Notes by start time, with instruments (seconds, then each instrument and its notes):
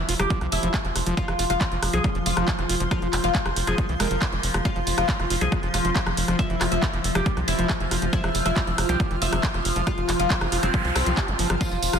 Already playing: synth drone F3, ambient pad F4 C5 C6
0.09 analog synth bass F1, acid bass F4, open hi-hat
0.19 analog synth bass F1, acid bass F3, oud G4, cross-stick, closed hi-hat
0.30 acid bass F3, kick, closed hi-hat
0.41 analog synth bass C2, acid bass F3, cross-stick, closed hi-hat
0.52 analog synth bass F1, oud E4, open hi-hat
0.63 analog synth bass F1, acid bass F3, closed hi-hat
0.74 acid bass G3, kick, cross-stick, clap, closed hi-hat
0.85 analog synth bass F1, acid bass F3, closed hi-hat
0.96 analog synth bass F1, cross-stick, open hi-hat
1.06 analog synth bass F1, acid bass F3, closed hi-hat
1.17 oud F4, kick, closed hi-hat
1.28 analog synth bass F1, acid bass E3, cross-stick, closed hi-hat
1.39 analog synth bass F1, acid bass F4, open hi-hat
1.50 analog synth bass F1, acid bass F3, oud F4, cross-stick, closed hi-hat
1.61 acid bass F3, kick, clap, closed hi-hat
1.72 analog synth bass F1, acid bass F3, closed hi-hat
1.83 analog synth bass F1, cross-stick, open hi-hat
1.93 analog synth bass C2, acid bass F3, oud G#4, closed hi-hat
2.04 acid bass G3, kick, cross-stick, closed hi-hat
2.15 analog synth bass F1, acid bass F3, closed hi-hat
2.26 analog synth bass F1, oud F4, open hi-hat
2.37 analog synth bass F1, acid bass F3, cross-stick, closed hi-hat
2.48 kick, clap, closed hi-hat
2.59 analog synth bass F1, acid bass E3, cross-stick, closed hi-hat
2.69 analog synth bass F1, acid bass F4, open hi-hat
2.80 analog synth bass F1, acid bass F3, closed hi-hat
2.91 acid bass F3, oud F4, kick, cross-stick, closed hi-hat
3.02 analog synth bass F1, acid bass F3, closed hi-hat
3.13 analog synth bass F1, cross-stick, clap, open hi-hat
3.24 analog synth bass F1, acid bass F3, oud F4, closed hi-hat
3.35 acid bass G3, kick, clap, closed hi-hat
3.46 analog synth bass F1, acid bass F3, cross-stick, closed hi-hat
3.56 analog synth bass F1, open hi-hat
3.67 analog synth bass F1, acid bass F3, oud G#4, cross-stick, closed hi-hat
3.78 acid bass F3, kick, closed hi-hat
3.89 analog synth bass C2, acid bass E3, closed hi-hat
4.00 analog synth bass F1, acid bass G#3, oud A#4, cross-stick, open hi-hat
4.11 analog synth bass F1, acid bass F3, closed hi-hat
4.22 acid bass F3, kick, cross-stick, clap, closed hi-hat
4.33 analog synth bass F1, acid bass E3, closed hi-hat
4.43 analog synth bass F1, open hi-hat
4.54 analog synth bass F1, acid bass F3, cross-stick, closed hi-hat
4.65 acid bass G3, oud F4, kick, cross-stick, closed hi-hat
4.76 analog synth bass F1, acid bass F3, closed hi-hat
4.87 analog synth bass F1, open hi-hat
4.98 analog synth bass F1, acid bass F3, oud F4, cross-stick, closed hi-hat
5.09 kick, clap, closed hi-hat
5.19 analog synth bass F1, acid bass E3, cross-stick, closed hi-hat
5.30 analog synth bass F1, acid bass F4, open hi-hat
5.41 analog synth bass C2, acid bass F3, oud G#4, closed hi-hat
5.52 acid bass F3, kick, cross-stick, closed hi-hat
5.63 analog synth bass F1, acid bass F3, closed hi-hat
5.74 analog synth bass F1, oud F4, cross-stick, open hi-hat
5.85 analog synth bass F1, acid bass F3, closed hi-hat
5.96 acid bass G3, kick, clap, closed hi-hat
6.06 analog synth bass F1, acid bass F3, ambient pad F6, cross-stick, closed hi-hat
6.17 analog synth bass F1, open hi-hat
6.28 analog synth bass F1, acid bass F3, cross-stick, closed hi-hat
6.39 acid bass F3, oud E4, kick, closed hi-hat
6.50 analog synth bass F1, acid bass E3, closed hi-hat
6.61 analog synth bass F1, acid bass F4, cross-stick, clap, open hi-hat
6.72 analog synth bass F1, acid bass F3, oud E4, closed hi-hat
6.83 acid bass F3, kick, cross-stick, clap, closed hi-hat
6.93 analog synth bass F1, acid bass F3, closed hi-hat
7.04 analog synth bass F1, open hi-hat
7.15 analog synth bass F1, acid bass F3, oud G4, cross-stick, closed hi-hat
7.26 acid bass G3, kick, closed hi-hat
7.37 analog synth bass C2, acid bass F3, cross-stick, closed hi-hat
7.48 analog synth bass F1, oud E4, open hi-hat
7.59 analog synth bass F1, acid bass F3, closed hi-hat
7.70 kick, cross-stick, clap, closed hi-hat
7.80 analog synth bass F1, acid bass E3, closed hi-hat
7.91 analog synth bass F1, acid bass F4, cross-stick, open hi-hat
8.02 analog synth bass F1, acid bass F3, closed hi-hat
8.13 acid bass F3, oud E4, kick, closed hi-hat
8.24 analog synth bass F1, acid bass F3, cross-stick, closed hi-hat
8.35 analog synth bass F1, open hi-hat
8.46 analog synth bass F1, acid bass F3, oud E4, cross-stick, closed hi-hat
8.56 acid bass G3, kick, clap, closed hi-hat
8.67 analog synth bass F1, acid bass F3, closed hi-hat
8.78 analog synth bass F1, cross-stick, open hi-hat
8.89 analog synth bass C2, acid bass F3, oud G4, closed hi-hat
9.00 acid bass F3, kick, cross-stick, closed hi-hat
9.11 analog synth bass F1, acid bass E3, closed hi-hat
9.22 analog synth bass F1, oud E4, acid bass F4, open hi-hat
9.33 analog synth bass F1, acid bass F3, cross-stick, closed hi-hat
9.43 acid bass F3, kick, clap, closed hi-hat
9.54 analog synth bass F1, acid bass F3, cross-stick, closed hi-hat
9.65 analog synth bass F1, open hi-hat
9.76 analog synth bass F1, acid bass F3, closed hi-hat
9.87 acid bass G3, oud F4, kick, cross-stick, closed hi-hat, noise sweep
9.98 analog synth bass F1, acid bass F3, closed hi-hat
10.09 analog synth bass F1, cross-stick, clap, open hi-hat
10.19 analog synth bass F1, acid bass F3, oud F4, closed hi-hat
10.30 kick, clap, closed hi-hat
10.41 analog synth bass F1, acid bass E3, cross-stick, closed hi-hat
10.52 analog synth bass F1, acid bass F4, open hi-hat
10.63 analog synth bass F1, acid bass F3, oud C4, cross-stick, closed hi-hat
10.74 acid bass F3, kick, closed hi-hat
10.85 analog synth bass C2, acid bass F3, closed hi-hat
10.96 analog synth bass C2, oud C4, cross-stick, open hi-hat
11.06 analog synth bass C2, acid bass F3, closed hi-hat
11.17 acid bass G4, kick, cross-stick, clap, closed hi-hat
11.28 analog synth bass G1, acid bass E3, closed hi-hat
11.39 analog synth bass G1, acid bass F3, open hi-hat
11.50 analog synth bass G1, acid bass F3, cross-stick, closed hi-hat
11.61 acid bass F3, synth drone F3, oud F4, kick, cross-stick, closed hi-hat, ride, tambourine
11.71 analog synth bass F1, acid bass F3, closed hi-hat, tambourine
11.82 analog synth bass F1, open hi-hat, ride, tambourine
11.93 analog synth bass F1, acid bass F3, oud F4, cross-stick, closed hi-hat, tambourine